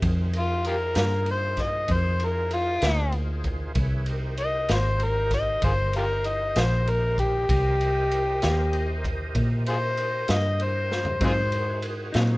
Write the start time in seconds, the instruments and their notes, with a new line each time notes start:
0.02 fingered electric bass F2, tonewheel organ D#4 F4 G#4 C5, kick, ride
0.33 ride
0.39 harmonica F4
0.64 harmonica F4 G4 A#4, ride
0.95 fingered electric bass G2, snare, ride
1.26 ride
1.31 harmonica C5
1.57 kick, snare, ride
1.62 harmonica D#5
1.88 fingered electric bass F2, kick, ride
1.93 harmonica C5
2.20 ride
2.25 harmonica A#4
2.51 harmonica F4, ride
2.82 fingered electric bass D2, snare, ride
3.12 ride
3.44 kick, ride
3.74 fingered electric bass C2, tonewheel organ E4 G#4 B4 C#5, kick, ride
4.06 tonewheel organ D#4 G4 A#4 C5, ride
4.37 harmonica D#5, ride
4.69 fingered electric bass G#1, harmonica C5, snare, ride
5.00 harmonica A#4, ride
5.31 harmonica D#5, kick, snare, ride
5.62 fingered electric bass G1, harmonica F4 G#4 C5, kick, ride
5.93 harmonica F4 G4 A#4, ride
6.24 harmonica D#5, ride
6.56 fingered electric bass A#1, harmonica C5, snare, ride
6.87 harmonica A#4, ride
7.18 harmonica G4, kick, ride
7.49 fingered electric bass C2, tonewheel organ G4 A#4 C5 D#5, kick, ride
7.81 ride
8.11 ride
8.42 fingered electric bass D#2, snare, ride
8.73 ride
9.04 kick, ride
9.35 fingered electric bass A#2, kick, ride
9.66 harmonica F4 G#4 C5, ride
9.97 ride
10.28 fingered electric bass G2, harmonica D#5, snare, ride
10.60 harmonica C5, ride
10.92 snare
11.05 floor tom
11.20 clean electric guitar G#2 F#3 C4 D#4, fingered electric bass G#2, tonewheel organ D#4 F#4 G#4 C5, kick, ride
11.24 harmonica F4 G#4 C5
11.52 ride
11.82 ride
12.12 fingered electric bass A#2, clean electric guitar F#3 C4 D#4, snare, ride